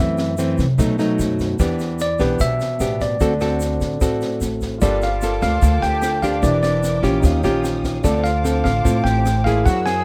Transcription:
Already playing: upright bass F#2, nylon-string guitar F#2 E3 A3 C4
0.00 tine electric piano E5
0.18 cross-stick, snare, shaker
0.38 nylon-string guitar E3 A3 C4, snare, shaker
0.58 upright bass C3, kick, snare, shaker
0.78 upright bass B1, nylon-string guitar B2 F#3 A3 D#4, kick, cross-stick, snare, shaker
0.99 nylon-string guitar F#3 A3 D#4, snare, shaker
1.19 upright bass F#2, snare, shaker
1.39 kick, snare, shaker
1.59 upright bass E2, nylon-string guitar E3 B3 D4 G4, kick, cross-stick, snare, shaker
1.79 snare, shaker
1.99 tine electric piano D5, snare, shaker
2.19 upright bass B1, nylon-string guitar B3 D4 G4, tine electric piano B4, kick, cross-stick, snare, shaker
2.39 upright bass B1, nylon-string guitar B2, tine electric piano E5, kick, snare, shaker
2.60 snare, shaker
2.80 upright bass A1, nylon-string guitar B3 D4 G4, cross-stick, snare, shaker
3.00 tine electric piano D5, kick, snare, shaker
3.20 upright bass D2, nylon-string guitar D3 C4 F#4 A4, kick, snare, shaker
3.40 nylon-string guitar C4 F#4 A4, cross-stick, snare, shaker
3.60 snare, shaker
3.81 upright bass A1, kick, snare, shaker
4.01 upright bass A1, nylon-string guitar A2 C4 F#4 A4, kick, cross-stick, snare, shaker
4.21 snare, shaker
4.41 upright bass A1, snare, shaker
4.61 kick, snare, shaker
4.78 upright bass G1, nylon-string guitar G3 A#3 F4, flute section D4, grand piano F4 A4, tine electric piano D5, violin section F5 A5, kick, cross-stick, snare, shaker
4.83 nylon-string guitar A4, violin section G5 D6, grand piano G5
5.01 flute section F4, tine electric piano F5, snare, shaker
5.22 nylon-string guitar A#3 F4 A4, snare, shaker
5.41 upright bass D2, flute section F4, tine electric piano F5, kick, cross-stick, snare, shaker
5.62 upright bass D2, nylon-string guitar D3 A#3 F4 A4, kick, snare, shaker
5.81 upright bass D2, flute section G4, tine electric piano G5, snare, shaker
6.01 grand piano F4 A4 G5, cross-stick, snare, shaker
6.22 nylon-string guitar A#3 D4 G4, flute section F4, tine electric piano F5, kick, snare, shaker
6.40 upright bass E1, nylon-string guitar E3, grand piano D4 G4 A#4, flute section D4, violin section A#4 E5 G5 D6, tine electric piano D5, kick, snare, shaker
6.46 grand piano E5
6.63 flute section D4, tine electric piano D5, cross-stick, snare, shaker
6.83 snare, shaker
7.03 upright bass A#1, nylon-string guitar C#4 F4 G4, kick, snare, shaker
7.20 upright bass D#2, nylon-string guitar D#3, grand piano D#4 G4, violin section C#5 F5 D#6, kick, cross-stick, snare, shaker
7.24 grand piano C#5 F5
7.43 upright bass A#1, nylon-string guitar C#4 F4 G4, grand piano A#5, snare, shaker
7.64 grand piano G5, snare, shaker
7.84 grand piano F5, kick, snare, shaker
8.01 upright bass D2, nylon-string guitar D3 C4 F4 A4, grand piano D4 A4 C5, flute section D4, violin section C5 A5 D6, tine electric piano D5, kick, cross-stick, snare, shaker
8.07 grand piano F5
8.23 flute section F4, tine electric piano F5, snare, shaker
8.44 nylon-string guitar C4 F4 A4, snare, shaker
8.62 upright bass A1, flute section F4, tine electric piano F5, kick, cross-stick, snare, shaker
8.84 upright bass A1, nylon-string guitar A2 C4 F4 A4, kick, snare, shaker
9.02 upright bass A1, flute section G4, tine electric piano G5, snare
9.06 shaker
9.26 cross-stick, snare, shaker
9.43 nylon-string guitar A#3 E4, flute section F4, tine electric piano F5, kick, snare, shaker
9.47 nylon-string guitar G#4
9.62 upright bass F#2, nylon-string guitar F#3, grand piano E4 G#4, flute section F#4, tine electric piano F#5
9.66 grand piano A#4 F#5, violin section A#4 F#5 G#5 E6, kick, snare, shaker
9.84 flute section G#4, tine electric piano G#5, cross-stick, snare, shaker

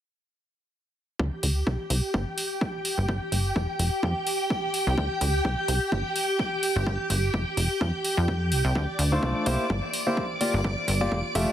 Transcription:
1.19 analog synth bass D2, string machine G4 G5, kick
1.43 analog synth bass D2, open hi-hat
1.67 analog synth bass C2, kick
1.90 analog synth bass C2, open hi-hat
2.14 analog synth bass G1, kick
2.38 open hi-hat
2.61 kick
2.85 open hi-hat
2.98 analog synth bass G1
3.09 kick
3.32 analog synth bass G1, open hi-hat
3.56 analog synth bass F1, kick
3.79 analog synth bass F1, open hi-hat
4.03 analog synth bass F2, kick
4.27 open hi-hat
4.50 kick
4.74 open hi-hat
4.87 analog synth bass C2
4.98 analog synth bass D2, kick
5.21 analog synth bass D2, open hi-hat
5.45 analog synth bass C2, kick
5.68 analog synth bass C2, open hi-hat
5.92 analog synth bass G1, kick
6.16 open hi-hat
6.39 kick
6.63 open hi-hat
6.76 analog synth bass G1
6.86 analog synth bass G1, kick
7.10 analog synth bass G1, open hi-hat
7.34 analog synth bass F1, kick
7.57 analog synth bass F1, open hi-hat
7.81 analog synth bass F2, kick
8.05 open hi-hat
8.17 analog synth bass F2
8.28 kick
8.52 analog synth bass C2, open hi-hat
8.65 analog synth bass C2
8.75 analog synth bass D2, string machine D5 D6, kick
8.99 analog synth bass D2, open hi-hat
9.12 grand piano A3 D4 F4 C5
9.23 analog synth bass C2, kick
9.46 analog synth bass C2, grand piano A#3 E4 G4 C5, open hi-hat
9.70 analog synth bass G1, kick
9.93 open hi-hat
10.07 grand piano A#3 E4 G4 C5
10.17 kick
10.41 grand piano A#3 F4 G4 D5, open hi-hat
10.54 analog synth bass G1
10.64 analog synth bass G1, kick
10.88 analog synth bass G1, open hi-hat
11.01 grand piano A#3 F4 G4 D5
11.12 analog synth bass F1, kick
11.35 analog synth bass F1, grand piano A3 F4 G4 E5, open hi-hat

